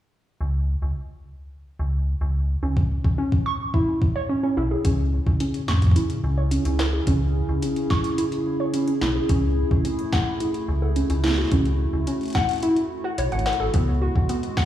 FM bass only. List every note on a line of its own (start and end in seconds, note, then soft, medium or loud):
0.41 0.75 C#2 medium
0.82 0.92 C#2 medium
1.79 2.14 C#2 medium
2.21 2.56 C#2 medium
2.63 2.97 C#2 medium
3.04 3.14 C#2 medium
4.57 4.76 B1 medium
4.85 5.19 C#2 loud
5.27 5.36 C#2 medium
6.24 6.58 C#2 medium
6.65 7.00 C#2 medium
7.07 7.42 C#2 medium
7.49 7.58 C#2 medium
9.02 9.20 B1 medium
9.29 9.64 C#2 medium
9.71 9.81 C#2 medium
10.68 11.03 C#2 medium
11.10 11.45 C#2 medium
11.52 11.86 C#2 medium
11.93 12.03 C#2 medium
13.18 13.28 B1 medium
13.32 13.51 G#1 loud
13.60 13.69 G#1 medium
13.74 14.08 C#2 medium
14.16 14.25 C#2 medium